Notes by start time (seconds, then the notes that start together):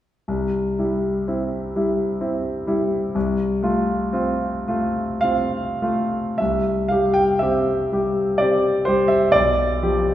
0.28 C2
0.79 G3 E4
1.28 C4 E4
1.76 G3 E4
2.21 C4 E4
2.67 G3 E4
3.15 C2
3.63 A3 F4
4.13 C4 F4
4.68 A3 F4
5.21 C4 F4 F5
5.82 A3 F4
6.38 C2 E5
6.88 G3 G4 F5
7.14 G5
7.39 C4 G4 E5
7.92 G3 G4
8.38 C4 G4 D5
8.85 G3 G4 C5
9.08 E5
9.32 B1 D5
9.83 F3 G4